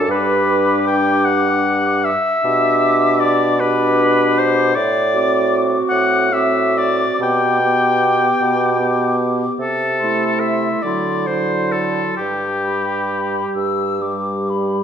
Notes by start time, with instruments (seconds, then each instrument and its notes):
0.08 bassoon G2, french horn D4, clarinet G4, oboe B4, flute D6
0.87 oboe G5
1.25 oboe F#5
2.04 oboe E5
2.42 bassoon B2, french horn D4, clarinet G4, flute D6
3.20 oboe D5
3.60 french horn D4, clarinet G4, oboe B4, flute D6
4.38 oboe C5
4.75 bassoon A2, oboe D5
5.12 french horn C4, clarinet F#4, flute D6
5.89 bassoon A2, oboe F#5
6.32 french horn C4, clarinet F#4, oboe E5, flute D6
6.78 oboe D5
7.20 bassoon B2, french horn B3, clarinet G4, oboe G5, flute D6
7.62 french horn B3, clarinet G4, flute D6
8.41 bassoon B2
8.79 french horn B3, clarinet G4, flute D6
9.59 bassoon C3, oboe A4
10.00 french horn A3, clarinet E4, flute C6
10.40 oboe E5
10.82 bassoon D3, french horn F#3, clarinet E4, oboe D5, flute C6
11.27 french horn F#3, clarinet E4, oboe C5, flute C6
11.72 oboe A4
12.17 bassoon G2, oboe G4
12.64 french horn G3, clarinet G4, flute B5
13.56 bassoon G2, flute E6
14.01 french horn G3, clarinet G4, flute D6
14.50 flute B5